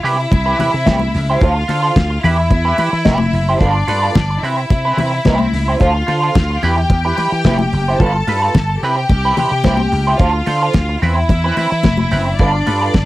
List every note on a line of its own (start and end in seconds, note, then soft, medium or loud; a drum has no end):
0.03 0.25 C3 medium
0.03 0.20 E4 medium
0.03 1.38 E4 medium
0.03 0.18 G4 loud
0.03 0.17 B4 loud
0.03 1.38 E5 medium
0.03 open hi-hat medium
0.18 muted clean electric guitar stroke soft
0.31 0.53 C2 medium
0.31 muted clean electric guitar stroke soft
0.31 kick loud
0.31 closed hi-hat medium
0.31 muted conga medium
0.46 0.57 E4 medium
0.46 0.58 G4 medium
0.46 0.59 B4 medium
0.59 0.70 C3 medium
0.59 0.72 E4 medium
0.59 0.72 G4 medium
0.59 0.72 B4 medium
0.59 open hi-hat medium
0.59 muted conga soft
0.59 low conga medium
0.73 0.84 C3 loud
0.73 muted clean electric guitar stroke soft
0.86 1.08 C2 loud
0.86 1.02 E4 medium
0.86 1.01 G4 medium
0.86 1.00 B4 medium
0.86 kick medium
0.86 snare loud
0.86 closed hi-hat medium
0.86 high conga medium
0.99 muted clean electric guitar stroke soft
0.99 high conga medium
1.14 1.35 C#2 medium
1.14 muted clean electric guitar stroke soft
1.14 snare soft
1.14 open hi-hat medium
1.30 1.41 E4 soft
1.30 1.41 G4 medium
1.30 1.40 C5 medium
1.41 1.62 D2 medium
1.41 2.21 F4 medium
1.41 1.58 F4 medium
1.41 1.56 A4 medium
1.41 1.55 C5 medium
1.41 2.22 F5 medium
1.41 kick loud
1.41 closed hi-hat medium
1.41 muted conga soft
1.56 muted clean electric guitar stroke soft
1.68 1.90 D3 medium
1.68 1.81 F4 medium
1.68 1.82 A4 medium
1.68 1.81 C5 medium
1.68 open hi-hat medium
1.68 muted conga soft
1.82 1.95 F4 medium
1.82 1.95 A4 medium
1.82 1.94 C5 medium
1.96 2.17 D2 medium
1.96 kick loud
1.96 snare loud
1.96 closed hi-hat medium
1.96 high conga medium
2.10 muted clean electric guitar stroke soft
2.23 2.45 E2 loud
2.23 3.57 E4 medium
2.23 2.40 E4 medium
2.23 2.38 G4 loud
2.23 2.38 B4 loud
2.23 3.58 E5 medium
2.23 open hi-hat medium
2.23 low conga medium
2.39 muted clean electric guitar stroke soft
2.50 2.72 E2 medium
2.50 muted clean electric guitar stroke soft
2.50 kick loud
2.50 closed hi-hat medium
2.50 muted conga medium
2.65 2.77 E4 medium
2.65 2.78 G4 medium
2.65 2.78 B4 medium
2.78 2.90 E3 medium
2.78 2.91 E4 medium
2.78 2.91 G4 medium
2.78 2.92 B4 medium
2.78 open hi-hat medium
2.78 muted conga soft
2.93 3.03 E3 loud
2.93 muted clean electric guitar stroke soft
3.05 3.27 F1 medium
3.05 3.26 E4 medium
3.05 3.20 G4 medium
3.05 3.20 B4 medium
3.05 kick medium
3.05 snare medium
3.05 closed hi-hat medium
3.05 high conga medium
3.18 muted clean electric guitar stroke medium
3.18 high conga medium
3.33 3.54 F#1 medium
3.33 muted clean electric guitar stroke soft
3.33 open hi-hat medium
3.49 3.60 E4 soft
3.49 3.60 G4 medium
3.49 3.59 C5 medium
3.60 3.82 G1 medium
3.60 4.41 D4 medium
3.60 3.77 F4 medium
3.60 3.75 A4 medium
3.60 3.74 B4 medium
3.60 4.41 D5 medium
3.60 kick loud
3.60 closed hi-hat medium
3.75 muted clean electric guitar stroke soft
3.88 4.09 G2 medium
3.88 4.01 F4 medium
3.88 4.01 A4 medium
3.88 4.01 B4 medium
3.88 open hi-hat medium
3.88 muted conga soft
4.02 4.14 F4 medium
4.02 4.14 A4 medium
4.02 4.14 B4 medium
4.15 4.37 G1 loud
4.15 kick loud
4.15 snare loud
4.15 closed hi-hat medium
4.15 high conga medium
4.30 muted clean electric guitar stroke medium
4.42 4.64 C3 medium
4.42 4.59 C4 medium
4.42 5.77 E4 medium
4.42 4.58 E4 medium
4.42 4.57 B4 medium
4.42 5.77 E5 medium
4.42 open hi-hat medium
4.58 muted clean electric guitar stroke soft
4.70 4.91 C3 medium
4.70 muted clean electric guitar stroke soft
4.70 kick loud
4.70 closed hi-hat medium
4.70 muted conga medium
4.85 4.98 C4 medium
4.85 4.98 E4 medium
4.85 4.99 B4 medium
4.97 5.19 C3 loud
4.97 5.11 C4 medium
4.97 5.11 E4 medium
4.97 5.12 B4 medium
4.97 open hi-hat medium
4.97 muted conga soft
4.97 low conga medium
5.14 muted clean electric guitar stroke soft
5.25 5.47 C2 medium
5.25 5.46 C4 medium
5.25 5.41 E4 medium
5.25 5.40 B4 medium
5.25 kick medium
5.25 snare medium
5.25 closed hi-hat medium
5.25 high conga medium
5.39 muted clean electric guitar stroke soft
5.39 high conga medium
5.53 5.74 C#2 medium
5.53 muted clean electric guitar stroke soft
5.53 snare soft
5.53 open hi-hat medium
5.68 5.79 C4 soft
5.68 5.79 E4 medium
5.68 5.79 C5 medium
5.80 6.02 D2 medium
5.80 5.96 F4 medium
5.80 6.61 F4 medium
5.80 5.95 A4 medium
5.80 5.94 C5 medium
5.80 6.61 F5 medium
5.80 kick loud
5.80 closed hi-hat medium
5.80 muted conga soft
5.95 muted clean electric guitar stroke soft
6.07 6.29 D3 medium
6.07 6.20 F4 medium
6.07 6.21 A4 medium
6.07 6.21 C5 medium
6.07 open hi-hat medium
6.07 muted conga soft
6.22 6.34 F4 soft
6.22 6.34 A4 medium
6.22 6.33 C5 medium
6.35 6.56 D2 medium
6.35 kick loud
6.35 snare loud
6.35 closed hi-hat medium
6.35 high conga medium
6.50 muted clean electric guitar stroke soft
6.63 6.84 E2 medium
6.63 6.79 E4 medium
6.63 7.97 G4 medium
6.63 6.78 G4 loud
6.63 6.77 B4 loud
6.63 7.97 G5 medium
6.63 open hi-hat medium
6.63 low conga medium
6.78 muted clean electric guitar stroke medium
6.90 7.11 E2 medium
6.90 muted clean electric guitar stroke soft
6.90 kick loud
6.90 closed hi-hat medium
6.90 muted conga medium
7.05 7.17 E4 medium
7.05 7.17 G4 medium
7.05 7.18 B4 medium
7.17 7.29 E3 loud
7.17 7.31 E4 medium
7.17 7.31 G4 medium
7.17 7.31 B4 medium
7.17 open hi-hat medium
7.17 muted conga soft
7.32 7.42 E3 medium
7.32 muted clean electric guitar stroke soft
7.44 7.66 F1 medium
7.44 7.62 E4 medium
7.44 7.59 G4 medium
7.44 7.59 B4 loud
7.44 kick medium
7.44 snare loud
7.44 closed hi-hat medium
7.44 high conga medium
7.59 muted clean electric guitar stroke soft
7.59 high conga medium
7.72 7.94 F#1 medium
7.72 muted clean electric guitar stroke soft
7.72 open hi-hat medium
7.88 8.00 E4 soft
7.88 7.99 G4 medium
7.88 7.99 C5 medium
8.00 8.21 G1 loud
8.00 8.16 F4 medium
8.00 8.81 A4 medium
8.00 8.15 A4 medium
8.00 8.14 B4 medium
8.00 8.81 A5 medium
8.00 kick loud
8.00 closed hi-hat medium
8.15 muted clean electric guitar stroke soft
8.27 8.48 G2 medium
8.27 8.40 F4 medium
8.27 8.41 A4 medium
8.27 8.41 B4 medium
8.27 open hi-hat medium
8.27 muted conga soft
8.42 8.54 F4 soft
8.42 8.54 A4 medium
8.42 8.53 B4 medium
8.55 8.76 G1 medium
8.55 kick loud
8.55 snare loud
8.55 closed hi-hat medium
8.55 high conga medium
8.69 muted clean electric guitar stroke soft
8.83 9.04 C3 medium
8.83 8.99 C4 medium
8.83 8.98 E4 medium
8.83 10.17 G4 medium
8.83 8.97 B4 loud
8.83 10.17 G5 medium
8.83 open hi-hat medium
8.98 muted clean electric guitar stroke soft
9.09 9.31 C2 medium
9.09 muted clean electric guitar stroke soft
9.09 kick loud
9.09 closed hi-hat medium
9.09 muted conga medium
9.25 9.37 C4 medium
9.25 9.37 E4 medium
9.25 9.38 B4 medium
9.37 9.48 C3 loud
9.37 9.50 C4 medium
9.37 9.51 E4 medium
9.37 9.51 B4 medium
9.37 open hi-hat medium
9.37 muted conga soft
9.37 low conga medium
9.51 9.62 C3 medium
9.51 muted clean electric guitar stroke soft
9.64 9.86 C2 medium
9.64 9.81 C4 medium
9.64 9.79 E4 medium
9.64 9.78 B4 medium
9.64 kick medium
9.64 snare medium
9.64 closed hi-hat medium
9.64 high conga medium
9.77 muted clean electric guitar stroke soft
9.77 high conga medium
9.92 10.14 C#2 medium
9.92 muted clean electric guitar stroke soft
9.92 open hi-hat medium
10.07 10.19 C4 medium
10.07 10.19 E4 medium
10.07 10.18 C5 medium
10.19 10.41 D2 medium
10.19 11.00 F4 medium
10.19 10.36 F4 medium
10.19 10.34 A4 medium
10.19 10.32 C5 medium
10.19 11.00 F5 medium
10.19 kick loud
10.19 closed hi-hat medium
10.19 muted conga soft
10.33 muted clean electric guitar stroke soft
10.46 10.68 D3 loud
10.46 10.60 F4 medium
10.46 10.60 A4 medium
10.46 10.60 C5 medium
10.46 open hi-hat medium
10.46 muted conga soft
10.62 10.74 F4 soft
10.62 10.73 A4 soft
10.62 10.73 C5 medium
10.73 10.95 D2 medium
10.73 kick loud
10.73 snare loud
10.73 closed hi-hat medium
10.73 high conga medium
10.89 muted clean electric guitar stroke medium
11.02 11.23 E2 medium
11.02 11.18 C4 medium
11.02 12.37 E4 medium
11.02 11.17 E4 medium
11.02 11.16 B4 medium
11.02 12.37 E5 medium
11.02 open hi-hat medium
11.02 low conga medium
11.17 muted clean electric guitar stroke soft
11.29 11.51 E2 loud
11.29 muted clean electric guitar stroke soft
11.29 kick loud
11.29 closed hi-hat medium
11.29 muted conga medium
11.44 11.56 C4 medium
11.44 11.57 E4 medium
11.44 11.57 B4 medium
11.57 11.68 E3 medium
11.57 11.70 C4 medium
11.57 11.70 E4 medium
11.57 11.70 B4 medium
11.57 open hi-hat medium
11.57 muted conga soft
11.71 11.82 E3 medium
11.71 muted clean electric guitar stroke soft
11.83 12.05 F1 medium
11.83 muted clean electric guitar stroke soft
11.83 kick medium
11.83 snare loud
11.83 closed hi-hat medium
11.83 high conga medium
11.97 muted clean electric guitar stroke soft
11.97 high conga medium
12.11 12.33 F#1 medium
12.11 12.28 C4 medium
12.11 12.26 E4 medium
12.11 12.25 B4 medium
12.11 open hi-hat medium
12.27 muted clean electric guitar stroke soft
12.39 12.61 G1 medium
12.39 13.05 D4 medium
12.39 12.56 F4 medium
12.39 12.54 A4 medium
12.39 12.53 B4 medium
12.39 13.05 D5 medium
12.39 kick loud
12.39 closed hi-hat medium
12.54 muted clean electric guitar stroke soft
12.66 12.89 G2 loud
12.66 12.80 F4 medium
12.66 12.80 A4 medium
12.66 12.80 B4 medium
12.66 open hi-hat medium
12.66 muted conga soft
12.81 12.93 F4 medium
12.81 12.93 A4 medium
12.81 12.93 B4 medium
12.94 13.05 G1 medium
12.94 kick loud
12.94 snare loud
12.94 closed hi-hat medium
12.94 high conga medium